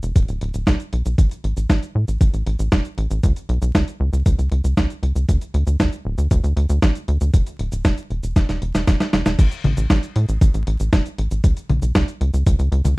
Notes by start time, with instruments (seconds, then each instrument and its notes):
0.03 analog synth bass E1, closed hi-hat, cabasa
0.16 analog synth bass D1, kick, closed hi-hat, cabasa
0.28 analog synth bass D1, closed hi-hat, cabasa
0.41 analog synth bass D1, closed hi-hat
0.54 analog synth bass D1, closed hi-hat, cabasa
0.67 analog synth bass B1, kick, snare, closed hi-hat, cabasa
0.80 closed hi-hat, cabasa
0.93 analog synth bass B1, closed hi-hat
1.06 analog synth bass B1, closed hi-hat, cabasa
1.18 analog synth bass A1, kick, closed hi-hat, cabasa
1.31 closed hi-hat, cabasa
1.44 analog synth bass A1, closed hi-hat
1.57 analog synth bass A1, closed hi-hat, cabasa
1.69 analog synth bass A1, kick, snare, closed hi-hat, cabasa
1.83 closed hi-hat, cabasa
1.95 analog synth bass A2
2.08 analog synth bass A1, closed hi-hat, cabasa
2.21 analog synth bass A1, kick, closed hi-hat, cabasa
2.34 analog synth bass A1, closed hi-hat, cabasa
2.47 analog synth bass A1, closed hi-hat
2.59 analog synth bass A1, closed hi-hat, cabasa
2.72 analog synth bass E1, kick, snare, closed hi-hat, cabasa
2.85 closed hi-hat, cabasa
2.98 analog synth bass A1, closed hi-hat
3.11 analog synth bass A1, closed hi-hat, cabasa
3.23 analog synth bass C#2, kick, closed hi-hat, cabasa
3.36 closed hi-hat, cabasa
3.49 analog synth bass B1, closed hi-hat
3.62 analog synth bass B1, closed hi-hat, cabasa
3.75 analog synth bass C#2, kick, snare, closed hi-hat, cabasa
3.88 closed hi-hat, cabasa
4.00 analog synth bass C#2
4.13 analog synth bass C#2, closed hi-hat, cabasa
4.26 analog synth bass C#2, kick, closed hi-hat, cabasa
4.39 analog synth bass C#2, closed hi-hat, cabasa
4.52 analog synth bass C#2, closed hi-hat
4.64 analog synth bass C#2, closed hi-hat, cabasa
4.77 analog synth bass C#2, kick, snare, closed hi-hat, cabasa
4.90 closed hi-hat, cabasa
5.03 analog synth bass C#2, closed hi-hat
5.15 analog synth bass C#2, closed hi-hat, cabasa
5.29 analog synth bass D2, kick, closed hi-hat, cabasa
5.41 closed hi-hat, cabasa
5.54 analog synth bass D2, closed hi-hat
5.67 analog synth bass D2, closed hi-hat, cabasa
5.80 analog synth bass D2, kick, snare, closed hi-hat, cabasa
5.93 closed hi-hat, cabasa
6.05 analog synth bass D1
6.18 analog synth bass D2, closed hi-hat, cabasa
6.31 analog synth bass D2, kick, closed hi-hat, cabasa
6.44 analog synth bass D2, closed hi-hat, cabasa
6.57 analog synth bass D2, closed hi-hat
6.69 analog synth bass D2, closed hi-hat, cabasa
6.82 analog synth bass A1, kick, snare, closed hi-hat, cabasa
6.95 closed hi-hat, cabasa
7.08 analog synth bass D2, closed hi-hat
7.21 analog synth bass D2, closed hi-hat, cabasa
7.34 analog synth bass E1, kick, closed hi-hat, cabasa
7.47 closed hi-hat, cabasa
7.59 analog synth bass D1, closed hi-hat
7.72 analog synth bass D1, closed hi-hat, cabasa
7.85 analog synth bass E1, kick, snare, closed hi-hat, cabasa
7.98 closed hi-hat, cabasa
8.11 analog synth bass E1, closed hi-hat
8.23 analog synth bass E1, closed hi-hat, cabasa
8.36 analog synth bass E1, kick, snare, closed hi-hat, cabasa
8.49 analog synth bass E1, snare, closed hi-hat, cabasa
8.62 analog synth bass E1, closed hi-hat
8.75 analog synth bass E1, snare, closed hi-hat, cabasa
8.87 analog synth bass E1, kick, snare, closed hi-hat, cabasa
9.00 snare, closed hi-hat, cabasa
9.13 analog synth bass E1, snare, closed hi-hat
9.26 analog synth bass E1, snare, closed hi-hat, cabasa
9.39 analog synth bass A1, kick, closed hi-hat, crash, cabasa
9.52 closed hi-hat, cabasa
9.64 analog synth bass A1, closed hi-hat, high tom
9.77 analog synth bass A1, closed hi-hat, cabasa
9.90 analog synth bass A1, kick, snare, closed hi-hat, cabasa
10.03 closed hi-hat, cabasa
10.16 analog synth bass A2, closed hi-hat
10.29 analog synth bass A1, closed hi-hat, cabasa
10.41 analog synth bass A1, kick, closed hi-hat, cabasa
10.54 analog synth bass A1, closed hi-hat, cabasa
10.67 analog synth bass A1, closed hi-hat
10.80 analog synth bass A1, closed hi-hat, cabasa
10.93 analog synth bass E1, kick, snare, closed hi-hat, cabasa
11.06 closed hi-hat, cabasa
11.18 analog synth bass A1, closed hi-hat
11.31 analog synth bass A1, closed hi-hat, cabasa
11.44 analog synth bass C#2, kick, closed hi-hat, cabasa
11.57 closed hi-hat, cabasa
11.70 analog synth bass B1, closed hi-hat, high tom
11.82 analog synth bass B1, closed hi-hat, cabasa
11.95 analog synth bass C#2, kick, snare, closed hi-hat, cabasa
12.08 closed hi-hat, cabasa
12.21 analog synth bass C#2, closed hi-hat
12.34 analog synth bass C#2, closed hi-hat, cabasa
12.46 analog synth bass C#2, kick, closed hi-hat, cabasa
12.59 analog synth bass C#2, closed hi-hat, cabasa
12.72 analog synth bass C#2, closed hi-hat
12.85 analog synth bass C#2, closed hi-hat, high tom, cabasa